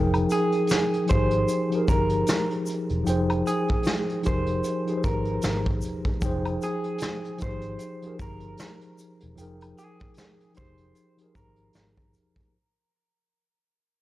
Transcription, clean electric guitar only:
0.32 1.06 G#4 medium
1.09 1.84 C5 medium
1.89 2.48 A#4 medium
3.47 4.21 G#4 medium
4.26 5.00 C5 medium
5.05 5.64 A#4 medium
6.63 7.37 G#4 medium
7.43 8.16 C5 medium
8.22 8.80 A#4 medium
9.79 10.53 G#4 medium
10.57 11.32 C5 medium
11.36 11.95 A#4 medium

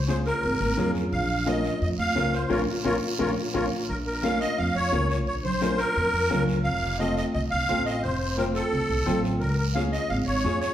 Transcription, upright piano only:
0.08 0.32 C#4 medium
0.08 0.33 F4 medium
0.08 0.33 G#4 medium
0.77 1.02 C#4 medium
0.77 1.02 F4 medium
0.77 1.02 G#4 medium
1.46 1.71 C#4 medium
1.46 1.71 F4 medium
1.46 1.71 A#4 medium
2.15 2.40 C#4 medium
2.15 2.40 F4 medium
2.15 2.40 A#4 medium
2.50 2.61 C#4 medium
2.50 2.61 F4 medium
2.50 2.61 A#4 medium
2.85 2.96 C#4 medium
2.85 2.96 F4 medium
2.85 2.96 A#4 medium
3.19 3.30 C#4 medium
3.19 3.30 F4 medium
3.19 3.30 A#4 loud
3.54 3.65 C#4 medium
3.54 3.65 F4 medium
3.54 3.65 A#4 medium
4.23 4.47 C#4 medium
4.23 4.48 F4 medium
4.23 4.48 A#4 medium
4.92 5.16 C#4 medium
4.92 5.17 F4 medium
4.92 5.17 A#4 medium
5.61 5.86 C#4 medium
5.61 5.86 F4 medium
5.61 5.86 A#4 medium
6.30 6.55 C#4 medium
6.30 6.55 F4 medium
6.30 6.55 A#4 medium
6.99 7.24 C4 medium
6.99 7.24 F4 medium
6.99 7.24 A4 medium
7.69 7.93 C4 medium
7.69 7.93 F4 medium
7.69 7.93 A4 medium
8.38 8.62 C4 medium
8.38 8.62 F4 medium
8.38 8.62 C5 medium
9.06 9.31 C4 medium
9.06 9.31 F4 medium
9.06 9.31 A4 medium
9.75 10.00 C#4 medium
9.75 10.00 F4 medium
9.75 10.00 G#4 medium
10.45 10.69 C#4 medium
10.45 10.69 F4 medium
10.45 10.69 G#4 medium

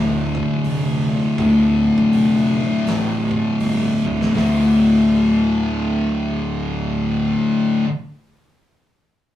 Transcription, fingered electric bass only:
0.00 0.38 D1 loud
0.65 1.12 F1 medium
1.38 1.86 D1 loud
2.13 2.61 F1 medium
2.86 3.34 A1 loud
3.60 3.89 G1 medium
4.05 4.24 D1 medium
4.34 7.32 D1 loud

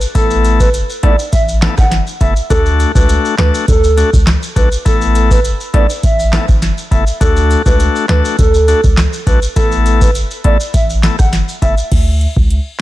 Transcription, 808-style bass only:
0.15 0.61 A1 loud
0.60 0.83 G1 loud
1.03 1.15 A1 medium
1.33 1.68 A1 loud
1.78 2.01 G1 medium
2.21 2.33 F#1 loud
2.50 2.85 D2 loud
2.95 3.18 C#2 medium
3.39 3.51 D2 loud
3.68 4.03 D2 loud
4.13 4.36 C#2 medium
4.56 4.68 B1 loud
4.86 5.32 A1 loud
5.31 5.54 G1 medium
5.74 5.86 A1 medium
6.03 6.38 A1 loud
6.49 6.71 G1 medium
6.91 7.04 F#1 loud
7.21 7.56 D2 loud
7.66 7.89 C#2 medium
8.09 8.21 D2 loud
8.39 8.74 D2 loud
8.84 9.07 C#2 loud
9.27 9.39 B1 loud
9.56 10.03 A1 loud
10.01 10.24 G1 medium
10.45 10.57 A1 medium
10.74 11.09 A1 loud
11.19 11.42 G1 medium
11.62 11.74 F#1 loud
11.92 12.27 D2 loud
12.37 12.59 C#2 loud

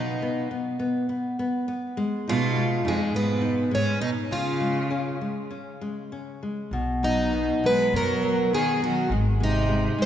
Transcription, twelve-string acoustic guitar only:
0.00 0.48 D#4 medium
2.29 2.88 F4 loud
2.88 3.16 G#3 medium
3.16 3.69 B3 medium
3.75 4.01 C#4 medium
4.02 4.09 D#4 medium
4.32 5.17 F4 medium
7.04 7.66 D#4 medium
7.66 7.95 B4 medium
7.96 8.54 A#4 loud
8.54 8.80 G#4 medium
8.84 9.10 F#4 medium
9.44 10.02 D#4 medium
10.02 10.06 C5 loud

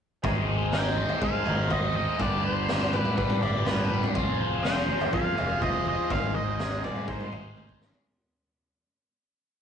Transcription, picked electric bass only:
0.24 1.02 G#1 medium
1.22 1.42 G#2 medium
1.47 2.05 G#1 medium
2.20 2.98 G1 medium
3.18 3.37 G2 medium
3.42 4.00 G1 medium
4.15 4.93 F1 medium
5.13 5.33 F2 loud
5.39 5.96 F1 medium
6.11 6.88 G#1 loud
7.08 7.27 G#2 loud
7.33 7.91 G#1 medium

